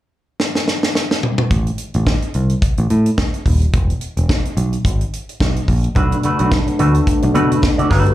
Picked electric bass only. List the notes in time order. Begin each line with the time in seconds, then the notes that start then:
1.51 A1
1.95 A1
2.35 C2
2.78 A1
2.90 A2
3.46 D#1
3.73 E1
4.17 E1
4.57 B1
4.85 G#1
5.40 B1
5.68 A#1
5.96 B1
6.40 B1
6.80 D2
7.23 B1
7.35 B2
7.91 G1